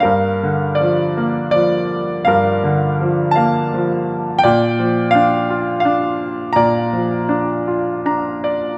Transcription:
<<
  \new Staff \with { instrumentName = "Grand piano" } { \time 3/4 \key g \minor \tempo 4 = 82 << { f''4 d''4 d''4 | f''4. a''4. | g''4 f''4 f''4 | bes''4. r8 bes''8 d''8 | } \\ { bes'4. r4. | bes'4. f''4. | d''4. r4. | d''4. r4. | } >> }
  \new Staff \with { instrumentName = "Grand piano" } { \clef bass \time 3/4 \key g \minor g,8 d8 f8 bes8 f4 | g,8 d8 f8 bes8 f4 | bes,8 f8 d'8 f'8 d'4 | bes,8 f8 d'8 f'8 d'4 | }
>>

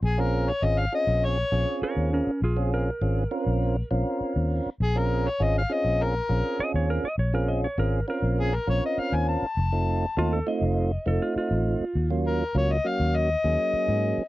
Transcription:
<<
  \new Staff \with { instrumentName = "Harmonica" } { \time 4/4 \key bes \minor \tempo 4 = 101 aes'16 bes'8 des''16 ees''16 f''16 ees''8 des''4 r4 | r1 | aes'16 bes'8 des''16 ees''16 f''16 ees''8 bes'4 r4 | r2 aes'16 bes'16 des''16 ees''16 f''16 aes''16 a''8~ |
a''4. r2 r8 | r8 bes'8 des''16 ees''16 f''8 ees''2 | }
  \new Staff \with { instrumentName = "Electric slide guitar" } { \time 4/4 \key bes \minor r2. <bes' des''>8 <des' bes'>8 | <f' aes'>8 bes'2 r4. | r2. ees''16 des''16 bes'16 ees''16 | des''16 bes'16 ees''16 des''16 bes'8 bes'8 r2 |
r4 f'16 a'16 ees''4 a'16 f'16 f'4~ | f'16 r2. r8. | }
  \new Staff \with { instrumentName = "Tonewheel organ" } { \time 4/4 \key bes \minor r16 <c' des' f' aes'>8 r16 <c' des' f' aes'>8 <c' des' f' aes'>8. r16 <c' des' f' aes'>4~ <c' des' f' aes'>16 r16 | r16 <c' des' f' aes'>8 r16 <c' des' f' aes'>8 <c' des' f' bes'>8. r16 <c' des' f' bes'>4~ <c' des' f' bes'>16 r16 | r16 <c' des' f' aes'>8 r16 <c' des' f' aes'>8 <c' des' f' aes'>8. r16 <c' des' f' aes'>4~ <c' des' f' aes'>16 r16 | r16 <c' des' f' aes'>8 r16 <c' des' f' aes'>8 <c' des' f' bes'>8. r16 <c' des' f' bes'>4~ <c' des' f' bes'>16 r16 |
r16 <a c' ees' f'>8 r16 <a c' ees' f'>8 <a c' ees' f'>8. r16 <a c' ees' f'>4~ <a c' ees' f'>16 r16 | r16 <ges bes des' f'>8 r16 <ges bes des' f'>8 <ges bes des' ges'>8. r16 <ges bes des' aes'>4~ <ges bes des' aes'>16 r16 | }
  \new Staff \with { instrumentName = "Fingered electric bass" } { \clef bass \time 4/4 \key bes \minor bes,,4 aes,,8 r16 bes,,8. bes,,16 r8 ees,8 r16 | bes,,4 aes,,8 r16 bes,,8. bes,,16 r8 ees,8 r16 | bes,,4 aes,,8 r16 bes,,8. bes,,16 r8 ees,8 r16 | bes,,4 aes,,8 r16 bes,,8. bes,,16 r8 ees,8 r16 |
f,,4 ees,8 r16 f,,8. f,,16 r8 a,,8 r16 | ees,4 des,8 r16 ees,8. ees,16 r8 aes,8 r16 | }
>>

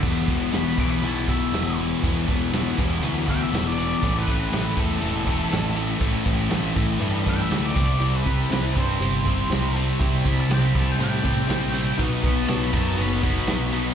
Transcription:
<<
  \new Staff \with { instrumentName = "Lead electric guitar" } { \time 4/4 \key e \minor \tempo 4 = 120 r4 b''8 d'''16 b''16 a''8 e''4 r8 | r2 r8 g''16 e''8 d''8.~ | d''16 b'4~ b'16 a'2 r8 | r2 r8 g''16 e''8 d''8.~ |
d''16 b'4~ b'16 c''2 r8 | r8 b''16 a''16 g''16 b''16 a''16 g''16 g''2 | r8 b''16 a''16 a''16 b''16 a''16 a''16 b''2 | }
  \new Staff \with { instrumentName = "Reed electric piano" } { \time 4/4 \key e \minor r1 | r1 | r1 | r1 |
<e' g' c''>4 <e' g' c''>4 <e' g' c''>4 <e' g' c''>4 | <e' g' c''>4 <e' g' c''>4 <e' g' c''>4 <e' g' c''>4 | <dis' fis' b'>4 <dis' fis' b'>4 <dis' fis' b'>4 <dis' fis' b'>4 | }
  \new Staff \with { instrumentName = "Overdriven electric guitar" } { \time 4/4 \key e \minor <e g b e'>8 <e g b e'>8 <e g b e'>8 <e g b e'>8 <e g b e'>8 <e g b e'>8 <e g b e'>8 <e g b e'>8 | <e g b e'>8 <e g b e'>8 <e g b e'>8 <e g b e'>8 <e g b e'>8 <e g b e'>8 <e g b e'>8 <e g b e'>8 | <a, e a c' e'>8 <a, e a c' e'>8 <a, e a c' e'>8 <a, e a c' e'>8 <a, e a c' e'>8 <a, e a c' e'>8 <a, e a c' e'>8 <a, e a c' e'>8 | <a, e a c' e'>8 <a, e a c' e'>8 <a, e a c' e'>8 <a, e a c' e'>8 <a, e a c' e'>8 <a, e a c' e'>8 <a, e a c' e'>8 <c g c' e'>8 |
<c g c' e'>8 <c g c' e'>8 <c g c' e'>8 <c g c' e'>8 <c g c' e'>8 <c g c' e'>8 <c g c' e'>8 <c g c' e'>8 | <c g c' e'>8 <c g c' e'>8 <c g c' e'>8 <c g c' e'>8 <c g c' e'>8 <c g c' e'>8 <c g c' e'>8 <c g c' e'>8 | <b, fis b dis'>8 <b, fis b dis'>8 <b, fis b dis'>8 <b, fis b dis'>8 <b, fis b dis'>8 <b, fis b dis'>8 <b, fis b dis'>8 <b, fis b dis'>8 | }
  \new Staff \with { instrumentName = "Overdriven electric guitar" } { \clef bass \time 4/4 \key e \minor <e, b, e>8 <e, b, e>8 <e, b, e>8 <e, b, e>8 <e, b, e>8 <e, b, e>8 <e, b, e>8 <e, b, e>8 | <e, b, e>8 <e, b, e>8 <e, b, e>8 <e, b, e>8 <e, b, e>8 <e, b, e>8 <e, b, e>8 <e, b, e>8 | <a, e a>8 <a, e a>8 <a, e a>8 <a, e a>8 <a, e a>8 <a, e a>8 <a, e a>8 <a, e a>8 | <a, e a>8 <a, e a>8 <a, e a>8 <a, e a>8 <a, e a>8 <a, e a>8 <a, e a>8 <c g c'>8 |
<c g c'>8 <c g c'>8 <c g c'>8 <c g c'>8 <c g c'>8 <c g c'>8 <c g c'>8 <c g c'>8 | <c g c'>8 <c g c'>8 <c g c'>8 <c g c'>8 <c g c'>8 <c g c'>8 <c g c'>8 <c g c'>8 | <b, fis b>8 <b, fis b>8 <b, fis b>8 <b, fis b>8 <b, fis b>8 <b, fis b>8 <b, fis b>8 <b, fis b>8 | }
  \new Staff \with { instrumentName = "Picked electric bass" } { \clef bass \time 4/4 \key e \minor e,,8 e,,8 e,,8 b,,8 b,,4 e,,4 | e,,8 e,,8 e,,8 e,,8 d,4 e,,4 | a,,8 a,,8 a,,8 e,8 e,,4 a,,4 | a,,8 a,,8 a,,8 a,,8 g,4 d,8 c,8 |
c,8 c,8 c,8 g,8 g,,4 c,4 | c,8 c,8 c,8 c,8 a,4 ais,,4 | b,,8 b,,8 b,,8 fis,8 fis,,4 b,,4 | }
  \new DrumStaff \with { instrumentName = "Drums" } \drummode { \time 4/4 <cymc bd>8 <bd cymr>8 <cymr sn>8 <bd cymr>8 cymr8 <bd cymr>8 <cymr sn>8 cymr8 | <bd cymr>8 <bd cymr>8 <cymr sn>8 <bd cymr>8 cymr16 sn16 <bd cymr>8 <cymr sn>8 cymr8 | <bd cymr>8 <bd cymr>8 <cymr sn>8 <bd cymr>8 cymr8 <bd cymr>8 <cymr sn>8 cymr8 | <bd cymr>8 <bd cymr>8 <cymr sn>8 <bd cymr>8 cymr8 <bd cymr>8 <cymr sn>8 <bd cymr>8 |
cymr8 <bd cymr>8 <cymr sn>8 <bd cymr>8 cymr8 <bd cymr>8 <cymr sn>8 cymr8 | <bd cymr>8 <bd cymr>8 <cymr sn>8 <bd cymr>8 cymr16 sn16 <bd cymr>8 <cymr sn>8 cymr8 | <bd cymr>8 <bd cymr>8 <cymr sn>8 <bd cymr>8 cymr8 <bd cymr>8 <cymr sn>8 cymr8 | }
>>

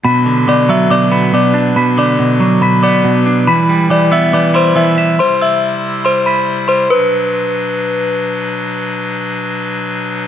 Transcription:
<<
  \new Staff \with { instrumentName = "Synth bell" } { \time 4/4 \key b \phrygian \tempo 4 = 140 <b'' b'''>4 <d'' d'''>8 <e'' e'''>8 <d'' d'''>8 <b'' b'''>8 <d'' d'''>4 | <b'' b'''>8 <d'' d'''>4. <b'' b'''>8 <d'' d'''>4. | <b'' b'''>4 <d'' d'''>8 <e'' e'''>8 <d'' d'''>8 <c'' c'''>8 <e'' e'''>4 | <c'' c'''>8 <e'' e'''>4. <c'' c'''>8 <b'' b'''>4 <c'' c'''>8 |
b'2. r4 | r1 | }
  \new Staff \with { instrumentName = "Pipe organ" } { \time 4/4 \key b \phrygian d'1~ | d'1 | e'1 | e'1 |
r1 | r1 | }
  \new Staff \with { instrumentName = "Pipe organ" } { \clef bass \time 4/4 \key b \phrygian << { <b, b'>1~ | <b, b'>1~ | <b, b'>1 | <c c''>1 |
<b, fis d' b'>1~ | <b, fis d' b'>1 | } \\ { fis1~ | fis1 | g1~ | g1 |
r1 | r1 | } >> }
  \new Staff \with { instrumentName = "Clean electric guitar" } { \clef bass \time 4/4 \key b \phrygian b,8 d8 b,8 fis8 b,8 b8 b,8 d'8 | b,8 d8 b,8 fis8 b,8 b8 b,8 d'8 | e8 g8 e8 b8 e8 e'8 e8 e''8 | r1 |
r1 | r1 | }
>>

